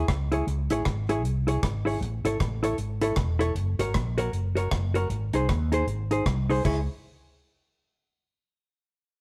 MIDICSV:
0, 0, Header, 1, 4, 480
1, 0, Start_track
1, 0, Key_signature, 4, "minor"
1, 0, Tempo, 386100
1, 586, Time_signature, 4, 2, 24, 8
1, 11445, End_track
2, 0, Start_track
2, 0, Title_t, "Hollow-body jazz guitar"
2, 0, Program_c, 0, 26
2, 393, Note_on_c, 0, 64, 87
2, 407, Note_on_c, 0, 68, 84
2, 417, Note_on_c, 0, 73, 83
2, 546, Note_off_c, 0, 64, 0
2, 553, Note_off_c, 0, 68, 0
2, 558, Note_off_c, 0, 73, 0
2, 878, Note_on_c, 0, 64, 85
2, 891, Note_on_c, 0, 68, 80
2, 898, Note_on_c, 0, 73, 83
2, 1029, Note_off_c, 0, 64, 0
2, 1035, Note_off_c, 0, 68, 0
2, 1039, Note_off_c, 0, 73, 0
2, 1357, Note_on_c, 0, 64, 82
2, 1362, Note_on_c, 0, 68, 85
2, 1376, Note_on_c, 0, 73, 80
2, 1508, Note_off_c, 0, 64, 0
2, 1511, Note_off_c, 0, 68, 0
2, 1517, Note_off_c, 0, 73, 0
2, 1828, Note_on_c, 0, 64, 69
2, 1840, Note_on_c, 0, 68, 74
2, 1844, Note_on_c, 0, 73, 83
2, 1983, Note_off_c, 0, 64, 0
2, 1989, Note_off_c, 0, 68, 0
2, 1991, Note_off_c, 0, 73, 0
2, 2302, Note_on_c, 0, 64, 79
2, 2315, Note_on_c, 0, 68, 81
2, 2323, Note_on_c, 0, 73, 90
2, 2460, Note_off_c, 0, 64, 0
2, 2467, Note_off_c, 0, 68, 0
2, 2471, Note_off_c, 0, 73, 0
2, 2794, Note_on_c, 0, 64, 81
2, 2803, Note_on_c, 0, 69, 81
2, 2813, Note_on_c, 0, 73, 84
2, 2947, Note_off_c, 0, 64, 0
2, 2951, Note_off_c, 0, 69, 0
2, 2956, Note_off_c, 0, 73, 0
2, 3266, Note_on_c, 0, 64, 85
2, 3276, Note_on_c, 0, 69, 95
2, 3287, Note_on_c, 0, 73, 96
2, 3422, Note_off_c, 0, 64, 0
2, 3428, Note_off_c, 0, 69, 0
2, 3433, Note_off_c, 0, 73, 0
2, 3748, Note_on_c, 0, 64, 84
2, 3756, Note_on_c, 0, 69, 89
2, 3772, Note_on_c, 0, 73, 87
2, 3903, Note_off_c, 0, 64, 0
2, 3908, Note_off_c, 0, 69, 0
2, 3915, Note_off_c, 0, 73, 0
2, 4217, Note_on_c, 0, 64, 94
2, 4229, Note_on_c, 0, 69, 96
2, 4238, Note_on_c, 0, 73, 105
2, 4378, Note_off_c, 0, 64, 0
2, 4384, Note_off_c, 0, 69, 0
2, 4389, Note_off_c, 0, 73, 0
2, 4715, Note_on_c, 0, 66, 73
2, 4723, Note_on_c, 0, 70, 73
2, 4734, Note_on_c, 0, 73, 84
2, 4867, Note_off_c, 0, 66, 0
2, 4871, Note_off_c, 0, 70, 0
2, 4876, Note_off_c, 0, 73, 0
2, 5192, Note_on_c, 0, 66, 88
2, 5201, Note_on_c, 0, 70, 100
2, 5209, Note_on_c, 0, 73, 89
2, 5345, Note_off_c, 0, 66, 0
2, 5350, Note_off_c, 0, 70, 0
2, 5354, Note_off_c, 0, 73, 0
2, 5662, Note_on_c, 0, 66, 82
2, 5676, Note_on_c, 0, 70, 88
2, 5686, Note_on_c, 0, 73, 96
2, 5820, Note_off_c, 0, 66, 0
2, 5827, Note_off_c, 0, 70, 0
2, 5832, Note_off_c, 0, 73, 0
2, 6145, Note_on_c, 0, 66, 76
2, 6160, Note_on_c, 0, 70, 93
2, 6164, Note_on_c, 0, 73, 98
2, 6302, Note_off_c, 0, 66, 0
2, 6309, Note_off_c, 0, 70, 0
2, 6311, Note_off_c, 0, 73, 0
2, 6634, Note_on_c, 0, 63, 74
2, 6647, Note_on_c, 0, 68, 79
2, 6655, Note_on_c, 0, 72, 89
2, 6786, Note_off_c, 0, 63, 0
2, 6793, Note_off_c, 0, 68, 0
2, 6797, Note_off_c, 0, 72, 0
2, 7109, Note_on_c, 0, 63, 68
2, 7124, Note_on_c, 0, 68, 84
2, 7134, Note_on_c, 0, 72, 85
2, 7264, Note_off_c, 0, 63, 0
2, 7271, Note_off_c, 0, 68, 0
2, 7276, Note_off_c, 0, 72, 0
2, 7594, Note_on_c, 0, 63, 67
2, 7603, Note_on_c, 0, 68, 81
2, 7615, Note_on_c, 0, 72, 85
2, 7747, Note_off_c, 0, 63, 0
2, 7751, Note_off_c, 0, 68, 0
2, 7757, Note_off_c, 0, 72, 0
2, 8075, Note_on_c, 0, 63, 77
2, 8085, Note_on_c, 0, 68, 88
2, 8093, Note_on_c, 0, 72, 98
2, 8227, Note_off_c, 0, 63, 0
2, 8232, Note_off_c, 0, 68, 0
2, 8236, Note_off_c, 0, 72, 0
2, 8261, Note_on_c, 0, 64, 86
2, 8273, Note_on_c, 0, 68, 97
2, 8280, Note_on_c, 0, 73, 91
2, 8437, Note_off_c, 0, 64, 0
2, 8443, Note_off_c, 0, 68, 0
2, 8446, Note_off_c, 0, 73, 0
2, 11445, End_track
3, 0, Start_track
3, 0, Title_t, "Fretless electric bass"
3, 0, Program_c, 1, 35
3, 106, Note_on_c, 1, 37, 88
3, 514, Note_off_c, 1, 37, 0
3, 586, Note_on_c, 1, 37, 127
3, 832, Note_off_c, 1, 37, 0
3, 876, Note_on_c, 1, 33, 97
3, 1037, Note_off_c, 1, 33, 0
3, 1070, Note_on_c, 1, 32, 100
3, 1543, Note_off_c, 1, 32, 0
3, 1543, Note_on_c, 1, 36, 86
3, 1952, Note_off_c, 1, 36, 0
3, 2024, Note_on_c, 1, 32, 103
3, 2432, Note_off_c, 1, 32, 0
3, 2496, Note_on_c, 1, 33, 123
3, 2746, Note_off_c, 1, 33, 0
3, 2785, Note_on_c, 1, 32, 85
3, 2950, Note_off_c, 1, 32, 0
3, 2991, Note_on_c, 1, 33, 108
3, 3396, Note_off_c, 1, 33, 0
3, 3460, Note_on_c, 1, 32, 84
3, 3870, Note_off_c, 1, 32, 0
3, 3937, Note_on_c, 1, 28, 97
3, 4348, Note_off_c, 1, 28, 0
3, 4413, Note_on_c, 1, 30, 112
3, 4664, Note_off_c, 1, 30, 0
3, 4707, Note_on_c, 1, 32, 83
3, 4871, Note_off_c, 1, 32, 0
3, 4909, Note_on_c, 1, 34, 104
3, 5315, Note_off_c, 1, 34, 0
3, 5377, Note_on_c, 1, 30, 97
3, 5788, Note_off_c, 1, 30, 0
3, 5862, Note_on_c, 1, 30, 87
3, 6271, Note_off_c, 1, 30, 0
3, 6333, Note_on_c, 1, 32, 118
3, 6584, Note_off_c, 1, 32, 0
3, 6625, Note_on_c, 1, 36, 95
3, 6791, Note_off_c, 1, 36, 0
3, 6825, Note_on_c, 1, 39, 99
3, 7233, Note_off_c, 1, 39, 0
3, 7299, Note_on_c, 1, 32, 100
3, 7709, Note_off_c, 1, 32, 0
3, 7781, Note_on_c, 1, 36, 92
3, 8191, Note_off_c, 1, 36, 0
3, 8268, Note_on_c, 1, 37, 100
3, 8536, Note_off_c, 1, 37, 0
3, 11445, End_track
4, 0, Start_track
4, 0, Title_t, "Drums"
4, 104, Note_on_c, 9, 36, 103
4, 104, Note_on_c, 9, 37, 127
4, 107, Note_on_c, 9, 42, 72
4, 229, Note_off_c, 9, 36, 0
4, 229, Note_off_c, 9, 37, 0
4, 231, Note_off_c, 9, 42, 0
4, 397, Note_on_c, 9, 42, 78
4, 522, Note_off_c, 9, 42, 0
4, 594, Note_on_c, 9, 42, 68
4, 718, Note_off_c, 9, 42, 0
4, 874, Note_on_c, 9, 42, 106
4, 998, Note_off_c, 9, 42, 0
4, 1061, Note_on_c, 9, 37, 96
4, 1064, Note_on_c, 9, 42, 55
4, 1072, Note_on_c, 9, 36, 101
4, 1186, Note_off_c, 9, 37, 0
4, 1189, Note_off_c, 9, 42, 0
4, 1196, Note_off_c, 9, 36, 0
4, 1360, Note_on_c, 9, 42, 85
4, 1484, Note_off_c, 9, 42, 0
4, 1554, Note_on_c, 9, 42, 63
4, 1678, Note_off_c, 9, 42, 0
4, 1838, Note_on_c, 9, 42, 91
4, 1963, Note_off_c, 9, 42, 0
4, 2027, Note_on_c, 9, 36, 116
4, 2027, Note_on_c, 9, 37, 127
4, 2030, Note_on_c, 9, 42, 82
4, 2151, Note_off_c, 9, 36, 0
4, 2152, Note_off_c, 9, 37, 0
4, 2155, Note_off_c, 9, 42, 0
4, 2328, Note_on_c, 9, 46, 46
4, 2452, Note_off_c, 9, 46, 0
4, 2518, Note_on_c, 9, 42, 73
4, 2643, Note_off_c, 9, 42, 0
4, 2801, Note_on_c, 9, 42, 108
4, 2925, Note_off_c, 9, 42, 0
4, 2986, Note_on_c, 9, 37, 97
4, 2989, Note_on_c, 9, 42, 64
4, 2990, Note_on_c, 9, 36, 100
4, 3110, Note_off_c, 9, 37, 0
4, 3114, Note_off_c, 9, 42, 0
4, 3115, Note_off_c, 9, 36, 0
4, 3278, Note_on_c, 9, 42, 96
4, 3402, Note_off_c, 9, 42, 0
4, 3456, Note_on_c, 9, 42, 63
4, 3581, Note_off_c, 9, 42, 0
4, 3748, Note_on_c, 9, 42, 105
4, 3872, Note_off_c, 9, 42, 0
4, 3931, Note_on_c, 9, 37, 108
4, 3933, Note_on_c, 9, 42, 74
4, 3940, Note_on_c, 9, 36, 113
4, 4055, Note_off_c, 9, 37, 0
4, 4058, Note_off_c, 9, 42, 0
4, 4065, Note_off_c, 9, 36, 0
4, 4235, Note_on_c, 9, 42, 84
4, 4359, Note_off_c, 9, 42, 0
4, 4423, Note_on_c, 9, 42, 77
4, 4548, Note_off_c, 9, 42, 0
4, 4718, Note_on_c, 9, 42, 112
4, 4842, Note_off_c, 9, 42, 0
4, 4903, Note_on_c, 9, 37, 96
4, 4906, Note_on_c, 9, 42, 62
4, 4909, Note_on_c, 9, 36, 100
4, 5027, Note_off_c, 9, 37, 0
4, 5030, Note_off_c, 9, 42, 0
4, 5034, Note_off_c, 9, 36, 0
4, 5196, Note_on_c, 9, 42, 88
4, 5320, Note_off_c, 9, 42, 0
4, 5387, Note_on_c, 9, 42, 56
4, 5511, Note_off_c, 9, 42, 0
4, 5677, Note_on_c, 9, 42, 97
4, 5802, Note_off_c, 9, 42, 0
4, 5861, Note_on_c, 9, 37, 113
4, 5864, Note_on_c, 9, 42, 70
4, 5865, Note_on_c, 9, 36, 106
4, 5985, Note_off_c, 9, 37, 0
4, 5988, Note_off_c, 9, 42, 0
4, 5989, Note_off_c, 9, 36, 0
4, 6157, Note_on_c, 9, 42, 85
4, 6281, Note_off_c, 9, 42, 0
4, 6342, Note_on_c, 9, 42, 76
4, 6467, Note_off_c, 9, 42, 0
4, 6631, Note_on_c, 9, 42, 101
4, 6756, Note_off_c, 9, 42, 0
4, 6825, Note_on_c, 9, 37, 91
4, 6828, Note_on_c, 9, 36, 105
4, 6828, Note_on_c, 9, 42, 65
4, 6949, Note_off_c, 9, 37, 0
4, 6952, Note_off_c, 9, 36, 0
4, 6952, Note_off_c, 9, 42, 0
4, 7116, Note_on_c, 9, 42, 97
4, 7241, Note_off_c, 9, 42, 0
4, 7306, Note_on_c, 9, 42, 56
4, 7431, Note_off_c, 9, 42, 0
4, 7597, Note_on_c, 9, 42, 84
4, 7722, Note_off_c, 9, 42, 0
4, 7782, Note_on_c, 9, 36, 112
4, 7785, Note_on_c, 9, 37, 121
4, 7787, Note_on_c, 9, 42, 78
4, 7906, Note_off_c, 9, 36, 0
4, 7909, Note_off_c, 9, 37, 0
4, 7912, Note_off_c, 9, 42, 0
4, 8083, Note_on_c, 9, 46, 52
4, 8208, Note_off_c, 9, 46, 0
4, 8268, Note_on_c, 9, 36, 100
4, 8269, Note_on_c, 9, 49, 87
4, 8392, Note_off_c, 9, 36, 0
4, 8393, Note_off_c, 9, 49, 0
4, 11445, End_track
0, 0, End_of_file